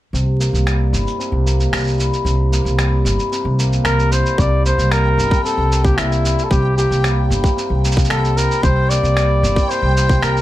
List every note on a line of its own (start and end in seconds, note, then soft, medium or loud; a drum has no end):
0.13 0.49 C2 medium
0.13 1.18 C3 medium
0.13 shaker soft
0.40 1.45 A#3 medium
0.40 shaker medium
0.53 0.89 C2 medium
0.53 shaker soft
0.66 1.72 G3 medium
0.66 finger snap medium
0.66 shaker soft
0.92 1.04 G1 medium
0.92 1.98 E4 soft
0.92 shaker medium
1.07 shaker soft
1.19 2.24 C3 medium
1.19 shaker soft
1.32 1.68 C2 medium
1.46 2.51 A#3 medium
1.46 shaker medium
1.60 shaker soft
1.72 2.08 C2 medium
1.72 2.78 G3 medium
1.72 finger snap medium
1.72 shaker soft
1.77 shaker soft
1.80 shaker soft
1.84 shaker soft
1.87 shaker soft
1.90 shaker soft
1.94 shaker soft
1.97 3.05 E4 medium
1.97 shaker soft
2.00 shaker medium
2.13 shaker soft
2.25 2.61 C2 medium
2.25 3.31 C3 medium
2.25 shaker soft
2.52 3.59 A#3 medium
2.52 shaker medium
2.65 3.01 C2 medium
2.65 shaker soft
2.78 3.85 G3 medium
2.78 finger snap medium
2.78 shaker soft
3.05 3.16 G1 medium
3.05 4.11 E4 medium
3.05 shaker medium
3.19 shaker soft
3.32 4.37 C3 medium
3.32 shaker soft
3.45 3.81 C2 medium
3.59 4.65 A#3 medium
3.59 shaker medium
3.73 shaker soft
3.85 4.21 C2 medium
3.85 4.91 G3 medium
3.85 4.14 A#4 loud
3.85 finger snap medium
3.85 shaker soft
3.99 shaker soft
4.12 5.17 E4 medium
4.12 4.41 C5 medium
4.12 shaker medium
4.26 shaker soft
4.38 4.74 C2 medium
4.38 5.43 C3 medium
4.38 4.65 D5 loud
4.38 10.42 G5 medium
4.38 kick loud
4.38 shaker soft
4.65 5.70 A#3 medium
4.65 4.93 C5 medium
4.65 shaker medium
4.78 5.14 C2 medium
4.78 shaker soft
4.92 5.96 G3 medium
4.92 5.44 A#4 loud
4.92 finger snap loud
4.92 shaker soft
5.18 5.29 G1 medium
5.18 6.24 E4 medium
5.18 shaker medium
5.31 kick medium
5.31 shaker soft
5.44 6.50 C3 medium
5.44 5.86 A4 loud
5.44 shaker soft
5.58 5.94 C2 medium
5.71 6.77 A#3 medium
5.71 shaker medium
5.84 5.99 G4 medium
5.84 kick medium
5.84 shaker soft
5.97 6.34 C2 medium
5.97 7.03 G3 medium
5.97 6.46 E4 medium
5.97 finger snap medium
5.97 shaker soft
6.12 shaker soft
6.24 7.30 E4 medium
6.24 shaker medium
6.39 shaker soft
6.44 6.52 A4 medium
6.51 6.87 C2 medium
6.51 7.56 C3 medium
6.51 6.77 G4 medium
6.51 kick loud
6.51 shaker soft
6.77 7.84 A#3 medium
6.77 7.27 G4 medium
6.77 shaker medium
6.91 7.26 C2 medium
6.91 shaker soft
7.04 8.09 G3 medium
7.04 finger snap medium
7.04 shaker soft
7.30 7.41 G1 loud
7.30 8.36 E4 medium
7.30 shaker medium
7.44 kick medium
7.44 shaker soft
7.57 8.62 C3 medium
7.57 shaker soft
7.70 8.06 C2 medium
7.84 8.90 A#3 medium
7.84 shaker medium
7.92 shaker medium
7.97 kick loud
7.97 shaker soft
8.04 shaker soft
8.10 8.46 C2 medium
8.10 9.16 G3 medium
8.10 8.38 A4 medium
8.10 finger snap medium
8.25 shaker soft
8.36 9.43 E4 medium
8.36 8.64 A#4 medium
8.36 shaker medium
8.51 shaker soft
8.63 8.99 C2 loud
8.63 9.68 C3 medium
8.63 8.91 C5 loud
8.63 kick loud
8.63 shaker soft
8.89 9.96 A#3 medium
8.89 9.71 D5 loud
8.89 shaker medium
9.03 9.39 C2 medium
9.03 shaker soft
9.17 10.22 G3 medium
9.17 finger snap medium
9.17 shaker soft
9.43 9.54 G1 loud
9.43 10.42 E4 medium
9.43 shaker medium
9.56 kick medium
9.56 shaker soft
9.69 10.42 C3 medium
9.69 10.24 C5 loud
9.69 shaker soft
9.82 10.18 C2 loud
9.96 10.42 A#3 medium
9.96 shaker medium
10.09 kick medium
10.09 shaker soft
10.22 10.42 C2 medium
10.22 10.42 G3 medium
10.22 10.42 A#4 medium
10.22 finger snap medium
10.22 shaker soft
10.37 shaker soft